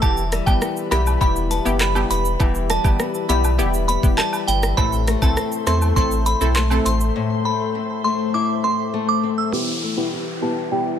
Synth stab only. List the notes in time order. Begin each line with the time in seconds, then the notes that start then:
0.02 B3 E4 G4
0.47 B3 E4 G4
0.91 B3 E4 G4
1.21 B3 E4 G4
1.65 B3 E4 G4
1.95 B3 E4 G4
2.39 B3 E4 G4
2.84 B3 E4 G4
3.29 B3 E4 G4
3.58 B3 E4 G4
4.03 B3 E4 G4
4.77 C4 E4 A4
5.22 C4 E4 A4
5.67 C4 E4 A4
5.96 C4 E4 A4
6.41 C4 E4 A4
6.71 C4 E4 A4
9.52 B3 E4 G4
9.97 B3 E4 G4
10.42 B3 E4 G4
10.72 B3 E4 G4